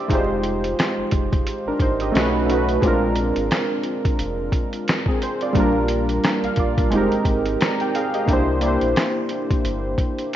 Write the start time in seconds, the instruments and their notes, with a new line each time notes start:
Already playing: synth keys E4 G4 C5 D5 E5
0.08 sub bass F1, synth keys G#3 D#4 F4, kick, closed hi-hat
0.13 synth keys G4 C5
0.44 closed hi-hat
0.64 closed hi-hat
0.79 snare, closed hi-hat
0.98 sub bass F1
1.11 sub bass F1, kick, closed hi-hat
1.33 kick, closed hi-hat
1.47 closed hi-hat
1.66 sub bass G#1, synth keys D4 A#4
1.80 sub bass G#1, synth keys D#4 C5, kick, closed hi-hat
2.00 synth keys G4 D#5, closed hi-hat
2.12 sub bass B1, synth keys A3 C#4 D#4, closed hi-hat
2.17 synth keys F#4 B4, snare
2.46 synth keys A3 C#4 D#4, closed hi-hat
2.52 synth keys F#4 B4
2.69 closed hi-hat
2.81 sub bass A#1, synth keys G#3 C4 D4, kick, closed hi-hat
2.86 synth keys F4 A#4
3.16 closed hi-hat
3.36 sub bass G#1, closed hi-hat
3.51 snare, closed hi-hat
3.84 closed hi-hat
4.05 kick, closed hi-hat
4.19 sub bass F1, closed hi-hat
4.52 kick, closed hi-hat
4.73 closed hi-hat
4.88 snare, closed hi-hat
5.06 synth keys C4 G#4, kick
5.22 synth keys C5, closed hi-hat
5.41 synth keys F4 D5, closed hi-hat
5.53 sub bass A#1, synth keys G3 A#3 D4, kick, closed hi-hat
5.58 synth keys F4 A#4
5.88 closed hi-hat
6.09 closed hi-hat
6.24 synth keys D4 A#4, snare, closed hi-hat
6.43 sub bass A#1, synth keys F5, closed hi-hat
6.56 sub bass A#1, synth keys F4 D5, kick, closed hi-hat
6.78 synth keys D4 A#4, kick, closed hi-hat
6.90 sub bass F1, synth keys G#3 C4 D#4, closed hi-hat
6.96 synth keys G4 A#4
7.11 sub bass G#1, closed hi-hat
7.25 sub bass G#1, kick, closed hi-hat
7.46 closed hi-hat
7.61 synth keys D5 A#5, snare, closed hi-hat
7.80 synth keys A#4 G5, closed hi-hat
7.95 synth keys G#4 F5, closed hi-hat
8.14 synth keys G4 D#5, closed hi-hat
8.26 sub bass C2, synth keys A#3 D4 E4, kick, closed hi-hat
8.32 synth keys G4 C5
8.61 synth keys A#3 D4 E4, closed hi-hat
8.66 synth keys G4 C5
8.81 sub bass A#1, closed hi-hat
8.96 snare, closed hi-hat
9.29 closed hi-hat
9.51 kick, closed hi-hat
9.64 sub bass G1, closed hi-hat
9.98 kick, closed hi-hat
10.18 closed hi-hat